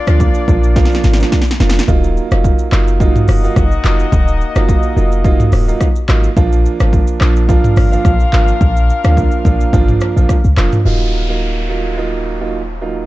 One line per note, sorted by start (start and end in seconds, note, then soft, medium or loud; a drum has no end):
0.00 1.56 A#3 medium
0.00 1.56 D4 medium
0.00 1.56 F4 medium
0.00 1.56 D5 loud
0.07 0.27 D2 medium
0.07 0.45 F3 medium
0.07 0.45 A#3 medium
0.07 0.45 D4 medium
0.07 0.45 F4 medium
0.07 cross-stick loud
0.07 shaker soft
0.20 kick loud
0.20 shaker medium
0.34 shaker medium
0.48 0.87 A#1 medium
0.48 0.74 F3 medium
0.48 0.74 A#3 medium
0.48 0.74 D4 medium
0.48 0.74 F4 medium
0.48 kick loud
0.48 shaker medium
0.64 shaker medium
0.76 1.16 F3 loud
0.76 1.16 A#3 medium
0.76 1.16 D4 medium
0.76 1.16 F4 loud
0.76 kick loud
0.76 snare medium
0.76 shaker medium
0.85 snare medium
0.92 snare medium
0.92 shaker soft
1.03 1.24 G#1 medium
1.03 snare medium
1.03 shaker medium
1.13 snare medium
1.19 1.37 F3 medium
1.19 1.37 A#3 medium
1.19 1.38 D4 medium
1.19 1.38 F4 medium
1.19 snare medium
1.19 shaker medium
1.32 kick loud
1.32 snare medium
1.32 shaker medium
1.41 snare medium
1.47 snare loud
1.47 shaker soft
1.60 1.80 F1 loud
1.60 1.80 F3 medium
1.60 1.80 A#3 medium
1.60 1.80 D4 medium
1.60 1.80 F4 medium
1.60 snare medium
1.60 shaker soft
1.70 snare loud
1.75 snare loud
1.75 shaker medium
1.88 2.19 D#1 loud
1.88 2.28 F#3 medium
1.88 2.28 A#3 medium
1.88 2.28 D#4 medium
1.88 2.28 F4 loud
1.88 kick loud
1.88 shaker medium
2.04 shaker soft
2.17 shaker medium
2.31 2.51 F1 medium
2.31 2.69 F#3 medium
2.31 2.69 A#3 medium
2.31 2.69 D#4 medium
2.31 2.69 F4 medium
2.31 cross-stick loud
2.31 shaker medium
2.44 kick loud
2.44 shaker medium
2.59 shaker medium
2.72 3.12 F#1 loud
2.72 2.98 F#3 medium
2.72 2.98 A#3 medium
2.72 2.98 D#4 medium
2.72 2.98 F4 medium
2.72 cross-stick medium
2.72 clap loud
2.72 shaker medium
2.88 shaker medium
3.00 3.40 F#3 medium
3.00 3.40 A#3 medium
3.00 6.05 A#3 medium
3.00 6.05 D#4 medium
3.00 3.40 D#4 medium
3.00 3.40 F4 loud
3.00 6.05 F#4 medium
3.00 6.05 D#5 loud
3.00 kick loud
3.00 shaker medium
3.16 mid tom medium
3.16 shaker soft
3.28 3.48 F1 medium
3.28 cross-stick loud
3.28 open hi-hat medium
3.43 3.62 F#3 medium
3.43 3.62 A#3 medium
3.43 3.62 D#4 medium
3.43 3.62 F4 medium
3.43 shaker medium
3.56 3.76 F#1 loud
3.56 kick loud
3.56 cross-stick medium
3.56 shaker medium
3.71 shaker medium
3.84 4.04 F1 medium
3.84 4.04 F#3 medium
3.84 4.04 A#3 medium
3.84 4.04 D#4 medium
3.84 4.04 F4 medium
3.84 clap medium
3.84 shaker medium
3.99 shaker medium
4.12 4.43 D#1 loud
4.12 kick loud
4.12 shaker medium
4.28 shaker medium
4.41 shaker medium
4.55 4.76 F#1 medium
4.55 4.93 F#3 medium
4.55 4.93 A#3 medium
4.55 4.94 D#4 medium
4.55 4.94 F4 medium
4.55 cross-stick loud
4.55 shaker medium
4.69 kick loud
4.69 shaker medium
4.83 shaker medium
4.96 5.36 F1 medium
4.96 5.22 F#3 medium
4.96 5.22 A#3 medium
4.96 5.23 D#4 medium
4.96 5.23 F4 medium
4.96 shaker medium
5.12 shaker medium
5.24 5.64 F#3 medium
5.24 5.64 A#3 medium
5.24 5.64 D#4 medium
5.24 5.64 F4 loud
5.24 kick loud
5.24 shaker medium
5.40 mid tom medium
5.40 shaker soft
5.52 5.72 D#1 loud
5.52 cross-stick medium
5.52 open hi-hat medium
5.68 5.86 F#3 medium
5.68 5.86 A#3 medium
5.68 5.86 D#4 medium
5.68 5.86 F4 medium
5.68 shaker medium
5.81 kick loud
5.81 cross-stick medium
5.81 shaker medium
5.96 shaker soft
6.08 6.28 G#1 medium
6.08 6.28 F#3 medium
6.08 6.28 A#3 medium
6.08 6.29 D#4 medium
6.08 6.29 F4 medium
6.08 cross-stick loud
6.08 clap loud
6.08 shaker medium
6.24 shaker medium
6.36 6.67 A#1 loud
6.36 6.76 F3 loud
6.36 6.76 A#3 medium
6.36 6.76 D4 medium
6.36 6.77 F4 loud
6.36 kick loud
6.36 shaker medium
6.52 shaker medium
6.66 shaker medium
6.80 7.00 G#1 medium
6.80 7.18 F3 medium
6.80 7.18 A#3 medium
6.80 7.18 D4 medium
6.80 7.18 F4 medium
6.80 cross-stick loud
6.80 shaker soft
6.93 kick loud
6.93 shaker medium
7.07 shaker medium
7.20 7.60 A#1 medium
7.20 7.47 F3 medium
7.20 7.47 A#3 medium
7.20 7.47 D4 medium
7.20 7.47 F4 medium
7.20 cross-stick medium
7.20 clap medium
7.20 shaker medium
7.36 shaker medium
7.48 7.88 F3 loud
7.48 7.89 A#3 medium
7.48 7.89 D4 medium
7.48 10.53 D4 medium
7.48 10.53 F4 medium
7.48 7.89 F4 loud
7.48 10.53 A#4 medium
7.48 10.53 F5 loud
7.48 kick loud
7.48 shaker medium
7.64 mid tom loud
7.64 shaker soft
7.76 7.97 G#1 medium
7.76 cross-stick loud
7.76 open hi-hat medium
7.92 8.10 F3 medium
7.92 8.10 A#3 medium
7.92 8.10 D4 medium
7.92 8.10 F4 medium
7.92 shaker medium
8.05 8.25 A#1 loud
8.05 kick loud
8.05 cross-stick medium
8.05 shaker medium
8.20 shaker soft
8.33 8.53 G#1 medium
8.33 8.53 F3 medium
8.33 8.53 A#3 medium
8.33 8.53 D4 medium
8.33 8.53 F4 medium
8.33 clap loud
8.33 shaker soft
8.48 shaker medium
8.61 8.92 A#1 loud
8.61 kick loud
8.61 shaker medium
8.77 shaker medium
8.90 shaker medium
9.04 9.24 D2 medium
9.04 9.42 F3 medium
9.04 9.42 A#3 medium
9.04 9.42 D4 medium
9.04 9.42 F4 medium
9.04 cross-stick loud
9.04 shaker medium
9.17 kick loud
9.17 shaker medium
9.31 shaker medium
9.45 9.65 A#1 medium
9.45 9.71 F3 medium
9.45 9.71 A#3 medium
9.45 9.71 D4 medium
9.45 9.71 F4 medium
9.45 kick loud
9.45 shaker medium
9.61 shaker medium
9.73 9.93 G#1 loud
9.73 10.13 F3 medium
9.73 10.13 A#3 medium
9.73 10.13 D4 medium
9.73 10.13 F4 loud
9.73 kick loud
9.73 shaker medium
9.88 mid tom loud
9.88 shaker soft
10.01 cross-stick loud
10.01 shaker medium
10.16 10.26 A#1 medium
10.16 10.34 F3 medium
10.16 10.35 A#3 medium
10.16 10.35 D4 medium
10.16 10.35 F4 medium
10.16 shaker medium
10.29 kick loud
10.29 cross-stick medium
10.29 shaker medium
10.44 10.54 C#2 loud
10.44 shaker soft
10.57 10.68 F1 medium
10.57 10.77 F3 medium
10.57 10.77 A#3 medium
10.57 10.77 D4 medium
10.57 10.77 F4 medium
10.57 cross-stick loud
10.57 clap loud
10.57 shaker soft
10.72 mid tom loud
10.72 shaker medium
10.85 13.06 D#1 medium
10.85 11.25 F#3 medium
10.85 11.25 A#3 medium
10.85 11.25 D#4 medium
10.85 11.25 F4 loud
10.85 downlifter medium
11.29 11.66 F#3 medium
11.29 11.66 A#3 medium
11.29 11.66 D#4 medium
11.29 11.67 F4 medium
11.69 11.95 F#3 medium
11.69 11.95 A#3 medium
11.69 11.95 D#4 medium
11.69 11.96 F4 medium
11.97 12.37 F#3 medium
11.97 12.37 A#3 medium
11.97 12.37 D#4 medium
11.97 12.37 F4 medium
12.41 12.59 F#3 medium
12.41 12.59 A#3 medium
12.41 12.59 D#4 medium
12.41 12.59 F4 medium
12.81 13.01 F#3 medium
12.81 13.01 A#3 medium
12.81 13.01 D#4 medium
12.81 13.02 F4 medium